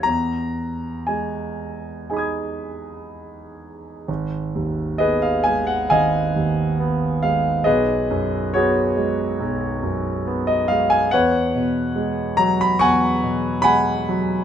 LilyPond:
<<
  \new Staff \with { instrumentName = "Grand piano" } { \time 4/4 \key gis \minor \tempo 4 = 69 << { r2 <gis'' b'' dis''' gis'''>2 | r4 <gis' b'>16 r8. <dis'' eis''>4. r8 | <gis' b'>4 <fis' gis'>2~ <fis' gis'>16 r8. | <b' cis''>4. r8 <fis'' gis''>4 <fis'' gis''>4 | } \\ { ais''4 gis''2~ gis''8 r8 | r4 dis''16 eis''16 gis''16 fis''16 gis''4. eis''8 | dis''4 cis''2~ cis''16 dis''16 eis''16 gis''16 | fis''4. ais''16 b''16 cis'''4 b''4 | } >> }
  \new Staff \with { instrumentName = "Grand piano" } { \clef bass \time 4/4 \key gis \minor e,4 gis4 <dis' gis'>2 | gis,,8 dis,8 b8 gis8 gis,,8 dis,8 b8 gis8 | b,,8 fis,8 b8 gis8 b,,8 fis,8 b8 gis8 | e,8 b,8 gis8 fis8 e,8 b,8 gis8 fis8 | }
>>